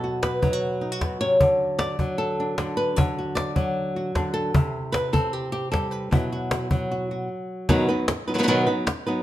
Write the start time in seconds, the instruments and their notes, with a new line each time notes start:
Already playing: nylon-string guitar B2 F#3 A4
0.04 nylon-string guitar F#4
0.23 nylon-string guitar B4, cajon slap
0.42 nylon-string guitar F#3 D#4, cajon bass
0.53 nylon-string guitar F#4
0.81 nylon-string guitar D#4, cajon slap
0.92 nylon-string guitar F#4
1.01 nylon-string guitar B2, cajon bass, cajon slap
1.21 nylon-string guitar C3 C#5
1.41 nylon-string guitar D3, cajon bass
1.79 nylon-string guitar D5, cajon slap
1.99 nylon-string guitar F#3, cajon bass
2.18 nylon-string guitar A4
2.40 nylon-string guitar D4
2.58 nylon-string guitar D3 D4, cajon slap
2.77 nylon-string guitar B4, cajon slap
2.96 nylon-string guitar D3 C#5, cajon bass
3.18 nylon-string guitar F#4
3.35 nylon-string guitar D5, cajon slap
3.56 nylon-string guitar F#3 F#4, cajon bass
3.96 nylon-string guitar F#4
4.15 nylon-string guitar D3 D4, cajon bass, cajon slap
4.34 nylon-string guitar A4
4.54 nylon-string guitar C3 E4, cajon bass
4.92 nylon-string guitar B4, cajon slap
5.13 nylon-string guitar C4 A4, cajon bass
5.33 nylon-string guitar G4
5.52 nylon-string guitar G4, cajon slap
5.72 nylon-string guitar G3 A4, cajon bass, cajon slap
5.91 nylon-string guitar B4
6.11 nylon-string guitar B2 F#3 E4 F#4, cajon bass
6.32 nylon-string guitar F#4
6.51 nylon-string guitar F#4, cajon slap
6.71 nylon-string guitar F#3 F#4, cajon bass
6.91 nylon-string guitar F#4
7.11 nylon-string guitar F#4
7.69 nylon-string guitar B2 D#3 F#3 B3 D#4 B4, cajon bass
7.89 nylon-string guitar F#3 B3 D#4 B4
8.08 muted nylon-string guitar stroke, cajon slap
8.28 nylon-string guitar F#3 B3 D#4 B4
8.34 nylon-string guitar D#3 F#3 B3 D#4 B4
8.38 nylon-string guitar D#3 F#3 B3 D#4 B4
8.43 nylon-string guitar D#3 F#3 B3 D#4 B4
8.48 nylon-string guitar B2 D#3 F#3 B3 D#4 B4
8.67 nylon-string guitar F#3 B3 D#4 B4
8.87 muted nylon-string guitar stroke, cajon slap
9.07 nylon-string guitar F#3 B3 D#4 B4